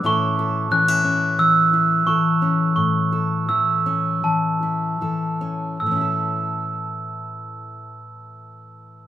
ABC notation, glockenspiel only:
X:1
M:4/4
L:1/16
Q:1/4=79
K:A
V:1 name="Glockenspiel"
c'4 f'4 e'4 c'3 z | c'4 e'4 a6 z2 | e'16 |]